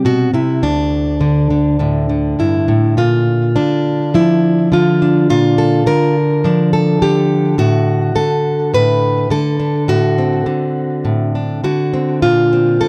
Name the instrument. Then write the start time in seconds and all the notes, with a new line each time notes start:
steel-string acoustic guitar
Already playing: C3 C4
0.05 B2 F#4
0.34 C3 E4
0.63 D2 D4
1.21 D3
1.50 D3
1.79 A2 D3
2.09 D3
2.39 G2 E4
2.68 A2
2.97 A#2 F4
3.56 D3 D4
4.14 F3 E4
4.72 D3 F4
5.02 D4
5.30 A#2 F4
5.58 A4
5.86 D3 A#4
6.44 F3 D4
6.73 A4
7.02 D3 G4
7.58 A2 F#4
8.15 D3 A4
8.74 A2 B4
9.30 D3 A4
9.60 D4
9.88 A2 F#4
10.18 C4
10.46 D3
11.05 A2
11.35 D4
11.64 D3 F#4
11.93 C4
12.22 A#2 F4
12.53 C4
12.81 D3 A4